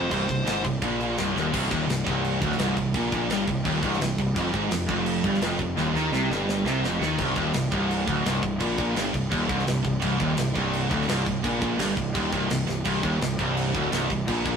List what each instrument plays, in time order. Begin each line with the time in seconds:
Already playing: picked electric bass F1, distorted electric guitar F2, lead electric guitar C5
0.11 picked electric bass C1, distorted electric guitar C2, kick, crash
0.29 picked electric bass C1, distorted electric guitar C2, kick, crash
0.47 picked electric bass G#1, distorted electric guitar G#2, snare, crash
0.64 picked electric bass C1, distorted electric guitar C2, kick, crash
0.82 picked electric bass A#1, distorted electric guitar A#2, kick, crash
1.01 crash
1.18 picked electric bass C1, distorted electric guitar C2, snare, crash
1.36 picked electric bass D#1, distorted electric guitar D#2, snare
1.53 picked electric bass C1, distorted electric guitar C2, kick, crash
1.71 picked electric bass D#1, distorted electric guitar D#2, kick, crash
1.88 picked electric bass C1, distorted electric guitar C2, snare, crash
2.06 picked electric bass C1, distorted electric guitar C2, kick, crash
2.25 crash
2.42 picked electric bass D1, distorted electric guitar D2, kick, crash
2.52 snare
2.58 picked electric bass C1, distorted electric guitar C2, snare, crash
2.77 picked electric bass C1, distorted electric guitar C2, kick, crash
2.94 picked electric bass A#1, distorted electric guitar A#2, kick, crash
3.12 picked electric bass A#1, distorted electric guitar A#2, kick, crash
3.29 picked electric bass G1, distorted electric guitar G2, snare, crash
3.47 picked electric bass C1, distorted electric guitar C2, kick, crash
3.65 picked electric bass D#1, distorted electric guitar D#2, kick, crash
3.82 picked electric bass C1, distorted electric guitar C2, kick, crash
3.93 snare
3.99 picked electric bass C1, distorted electric guitar C2, snare, crash
4.18 picked electric bass C1, distorted electric guitar C2, kick, crash
4.36 picked electric bass F1, distorted electric guitar F2, kick, crash
4.52 picked electric bass G#1, overdriven electric guitar G#2, kick, crash
4.56 distorted electric guitar G#2
4.69 picked electric bass F1, overdriven electric guitar F2, snare, crash
4.73 distorted electric guitar F2
4.89 picked electric bass F1, distorted electric guitar F2, kick, crash
5.06 crash
5.24 picked electric bass G1, distorted electric guitar G2, kick, crash
5.34 snare
5.42 picked electric bass F1, distorted electric guitar F2, snare, crash
5.59 picked electric bass F1, distorted electric guitar F2, kick, crash
5.77 picked electric bass D#1, distorted electric guitar D#2, snare
5.94 picked electric bass D#2, distorted electric guitar D#3, snare
6.12 picked electric bass C2, distorted electric guitar C3, snare
6.29 picked electric bass G1, distorted electric guitar G2, snare
6.49 snare
6.64 picked electric bass C2, distorted electric guitar C3, snare
6.82 picked electric bass F1, distorted electric guitar F2, snare
7.01 picked electric bass D#2, distorted electric guitar D#3, snare
7.18 picked electric bass C1, distorted electric guitar C2, kick, crash
7.36 picked electric bass D#1, distorted electric guitar D#2, kick, crash
7.53 picked electric bass C1, distorted electric guitar C2, snare, crash
7.72 picked electric bass C1, distorted electric guitar C2, kick, crash
7.91 crash
8.07 picked electric bass D1, distorted electric guitar D2, kick, crash
8.24 picked electric bass C1, distorted electric guitar C2, snare, crash
8.43 picked electric bass C1, distorted electric guitar C2, kick, crash
8.60 picked electric bass A#1, distorted electric guitar A#2, kick, crash
8.78 picked electric bass A#1, distorted electric guitar A#2, kick, crash
8.96 picked electric bass G1, distorted electric guitar G2, snare, crash
9.13 picked electric bass C1, distorted electric guitar C2, kick, crash
9.32 picked electric bass D#1, distorted electric guitar D#2, kick, crash
9.49 picked electric bass C1, distorted electric guitar C2, kick, crash
9.59 snare
9.67 picked electric bass C1, distorted electric guitar C2, snare, crash
9.82 picked electric bass C1, distorted electric guitar C2, kick, crash
9.87 distorted electric guitar C2
10.00 picked electric bass C1, distorted electric guitar C2, kick, crash
10.04 distorted electric guitar C2
10.19 picked electric bass D#1, distorted electric guitar D#2, kick, crash
10.37 picked electric bass C1, distorted electric guitar C2, snare, crash
10.55 picked electric bass C1, distorted electric guitar C2, kick, crash
10.73 crash
10.90 picked electric bass D1, distorted electric guitar D2, kick, crash
11.02 snare
11.08 picked electric bass C1, distorted electric guitar C2, snare, crash
11.26 picked electric bass C1, distorted electric guitar C2, kick, crash
11.44 picked electric bass A#1, distorted electric guitar A#2, kick, crash
11.62 picked electric bass A#1, distorted electric guitar A#2, kick, crash
11.79 picked electric bass G1, distorted electric guitar G2, snare, crash
11.97 picked electric bass C1, distorted electric guitar C2, kick, crash
12.15 picked electric bass D#1, distorted electric guitar D#2, kick, crash
12.32 picked electric bass C1, distorted electric guitar C2, kick, crash
12.50 picked electric bass C1, distorted electric guitar C2, snare, crash
12.67 picked electric bass C1, distorted electric guitar C2, snare
12.85 picked electric bass C1, distorted electric guitar C2, kick, crash
13.03 picked electric bass D#1, distorted electric guitar D#2, kick, crash
13.20 picked electric bass C1, distorted electric guitar C2, snare, crash
13.39 picked electric bass C1, distorted electric guitar C2, kick, crash
13.57 crash
13.75 picked electric bass D1, distorted electric guitar D2, kick, crash
13.91 picked electric bass C1, distorted electric guitar C2, snare, crash
14.10 picked electric bass C1, distorted electric guitar C2, kick, crash
14.27 picked electric bass A#1, distorted electric guitar A#2, kick, crash
14.44 picked electric bass A#1, distorted electric guitar A#2, kick, crash